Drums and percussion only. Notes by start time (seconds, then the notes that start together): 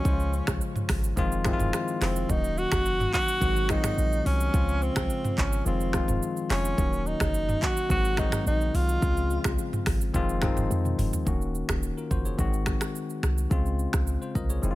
0.05 kick, shaker
0.20 shaker
0.33 shaker
0.47 finger snap, kick, cross-stick, shaker
0.61 shaker
0.76 mid tom, shaker
0.89 finger snap, kick, cross-stick, open hi-hat, shaker
1.04 shaker
1.17 kick, shaker
1.32 shaker
1.45 finger snap, kick, cross-stick, mid tom, shaker
1.59 mid tom, shaker
1.73 finger snap, cross-stick, shaker
1.88 shaker
2.02 finger snap, cross-stick, clap, open hi-hat, shaker
2.16 shaker
2.29 kick, shaker
2.44 shaker
2.58 shaker
2.72 finger snap, kick, cross-stick, shaker
2.86 shaker
3.00 mid tom, shaker
3.14 kick, clap, shaker
3.28 shaker
3.41 kick, shaker
3.56 shaker
3.69 finger snap, kick, cross-stick, shaker
3.84 finger snap, cross-stick, mid tom, shaker
3.98 shaker
4.13 shaker
4.26 open hi-hat, shaker
4.41 shaker
4.54 kick, shaker
4.69 shaker
4.82 shaker
4.96 finger snap, kick, cross-stick, shaker
5.10 shaker
5.24 mid tom, shaker
5.38 kick, clap, shaker
5.53 shaker
5.66 shaker
5.81 shaker
5.93 finger snap, kick, cross-stick, shaker
6.08 mid tom, shaker
6.23 shaker
6.37 shaker
6.50 finger snap, cross-stick, clap, open hi-hat, shaker
6.65 shaker
6.78 kick, shaker
6.93 shaker
7.06 shaker
7.20 finger snap, kick, cross-stick, shaker
7.34 shaker
7.49 mid tom, shaker
7.62 kick, clap, shaker
7.77 shaker
7.90 kick, shaker
8.05 shaker
8.17 finger snap, kick, cross-stick, shaker
8.32 finger snap, cross-stick, mid tom, shaker
8.47 shaker
8.61 shaker
8.75 open hi-hat, shaker
8.89 shaker
9.02 kick, shaker
9.17 shaker
9.30 shaker
9.44 finger snap, kick, cross-stick, shaker
9.59 shaker
9.73 mid tom, shaker
9.86 finger snap, kick, cross-stick, open hi-hat, shaker
10.01 shaker
10.14 kick, shaker
10.29 shaker
10.42 finger snap, kick, cross-stick, mid tom, shaker
10.57 mid tom, shaker
10.71 high tom, shaker
10.85 mid tom, shaker
10.99 mid tom, open hi-hat, shaker
11.13 floor tom, shaker
11.27 kick, shaker
11.41 shaker
11.55 shaker
11.69 finger snap, kick, cross-stick, shaker
11.83 shaker
11.98 shaker
12.11 kick, shaker
12.25 shaker
12.39 kick, shaker
12.53 shaker
12.66 finger snap, kick, cross-stick, shaker
12.81 finger snap, cross-stick, shaker
12.95 shaker
13.10 shaker
13.23 finger snap, cross-stick, shaker
13.38 shaker
13.51 kick, shaker
13.66 shaker
13.79 shaker
13.93 finger snap, kick, cross-stick, shaker
14.07 shaker
14.22 shaker
14.35 kick, shaker
14.50 shaker
14.63 shaker